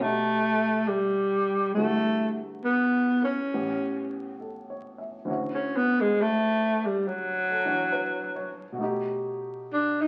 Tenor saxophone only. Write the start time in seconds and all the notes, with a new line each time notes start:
0.02 A3
0.88 G3
1.74 A3
2.64 B3
3.24 C#4
5.54 C#4
5.76 B3
6.01 G#3
6.21 A3
6.86 G3
7.08 F#3
9.73 D4
10.01 D#4